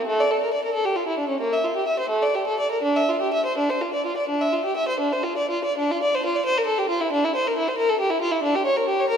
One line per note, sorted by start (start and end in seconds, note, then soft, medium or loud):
0.07 0.18 A3 medium
0.20 0.31 D5 medium
0.31 0.42 A4 medium
0.43 0.53 A#4 soft
0.53 0.64 D5 medium
0.64 0.75 A#4 medium
0.73 0.85 A4 medium
0.85 0.96 G4 medium
0.96 1.07 F4 soft
1.07 1.18 E4 soft
1.18 1.29 D4 soft
1.29 1.40 C#4 soft
1.40 1.52 A#3 medium
1.53 1.64 E5 medium
1.64 1.75 F4 soft
1.76 1.87 G4 medium
1.87 1.99 E5 medium
1.99 2.11 C5 medium
2.09 2.21 A3 medium
2.23 2.34 D5 medium
2.35 2.46 G4 soft
2.47 2.58 A4 soft
2.60 2.71 D5 medium
2.72 2.83 A#4 soft
2.83 2.95 D4 medium
2.96 3.08 E5 medium
3.08 3.20 F4 soft
3.21 3.32 G4 soft
3.34 3.45 E5 soft
3.45 3.57 C5 medium
3.58 3.69 D4 medium
3.69 3.81 C5 soft
3.81 3.93 F4 soft
3.94 4.05 D5 soft
4.06 4.17 F4 soft
4.17 4.29 D5 soft
4.29 4.40 D4 medium
4.41 4.53 E5 medium
4.53 4.65 F4 soft
4.65 4.77 G4 soft
4.77 4.88 E5 medium
4.88 5.00 C5 soft
5.00 5.12 D4 soft
5.13 5.25 C5 soft
5.24 5.37 F4 soft
5.37 5.51 D5 soft
5.50 5.64 F4 soft
5.65 5.77 D5 soft
5.78 5.89 D4 medium
5.91 6.02 F4 medium
6.03 6.13 D5 medium
6.15 6.25 C5 medium
6.26 6.35 F4 medium
6.36 6.46 D5 medium
6.46 6.56 C5 medium
6.58 6.68 A#4 medium
6.66 6.78 A4 medium
6.78 6.90 G4 medium
6.89 7.01 F4 medium
7.01 7.12 E4 medium
7.12 7.23 D4 medium
7.25 7.35 E4 medium
7.35 7.46 C5 medium
7.47 7.57 A#4 medium
7.58 7.68 E4 medium
7.68 7.79 C5 medium
7.78 7.89 A#4 medium
7.89 8.00 A4 medium
8.00 8.11 G4 medium
8.10 8.22 E4 medium
8.21 8.33 F4 medium
8.31 8.44 E4 medium
8.43 8.55 D4 medium
8.55 8.67 G4 medium
8.66 8.77 C#5 medium
8.77 8.88 A#4 medium
8.88 8.99 G4 soft
9.00 9.10 C#5 medium
9.09 9.17 A#4 medium